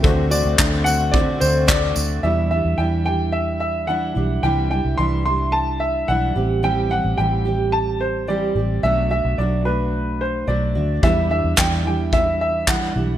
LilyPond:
<<
  \new Staff \with { instrumentName = "Upright piano" } { \time 4/4 \key e \minor \tempo 4 = 109 r8 d''4 fis''8 d''8 c''8 d''4 | e''8 e''8 g''8 g''8 e''8 e''8 fis''4 | g''8 g''8 c'''8 c'''8 a''8 e''8 fis''4 | g''8 fis''8 g''4 a''8 c''8 d''4 |
e''8 e''8 d''8 b'4 c''8 d''4 | e''8 e''8 g''8 g''8 e''8 e''8 fis''4 | }
  \new Staff \with { instrumentName = "Grand piano" } { \time 4/4 \key e \minor <a c' d' fis' c''>1 | r1 | r1 | r1 |
r1 | <d' g' b' e''>1 | }
  \new Staff \with { instrumentName = "Steel-string acoustic guitar" } { \time 4/4 \key e \minor <d a c' fis'>8 <a c' fis'>8 <d a c' fis'>8 <a c' fis'>8 <d a c' fis'>4 <d a c' fis'>4 | <e, b, e g d' e'>8 <e g d' e'>8 <e g d' e'>8 <e g d' e'>4. <e g d' e'>8 <e g d' e'>8 | <c e g d' e'>8 <g d' e'>8 <e g d' e'>8 <g d' e'>4. <e g d' e'>8 <g c' g'>8 | <a, e g c' g'>8 <g c' g'>8 <e g c' g'>8 <g c' g'>4. <e g c' g'>8 <g c' g'>8 |
<b, fis a d' fis'>8 <a d' fis'>8 <fis a d' fis'>8 <a d' fis'>4. <fis a d' fis'>8 <a d' fis'>8 | <e, b, e g d' e'>8 <e g d' e'>8 <e g d' e'>8 <e g d' e'>4. <e g d' e'>8 <e g d' e'>8 | }
  \new Staff \with { instrumentName = "Harmonium" } { \time 4/4 \key e \minor <d a c' fis'>1 | r1 | r1 | r1 |
r1 | r1 | }
  \new Staff \with { instrumentName = "Fingered electric bass" } { \clef bass \time 4/4 \key e \minor d,8. d,16 d,4~ d,16 r16 d,4 d,8 | e,8. e,16 e,2~ e,8 b,,8 | c,8. c,16 c,2 b,,8 a,,8~ | a,,8. a,,16 a,,2~ a,,8 a,,8 |
b,,8. b,,16 b,,2 b,,8 d,8 | e,8. e,16 e,2~ e,8 b,,8 | }
  \new DrumStaff \with { instrumentName = "Drums" } \drummode { \time 4/4 bd8 tamb8 <hc bd>8 tamb8 bd8 tamb8 <hc bd>8 tamb8 | r4 r4 r4 r4 | r4 r4 r4 r4 | r4 r4 r4 r4 |
r4 r4 r4 r4 | bd4 <hc bd>4 bd4 <hc bd>4 | }
>>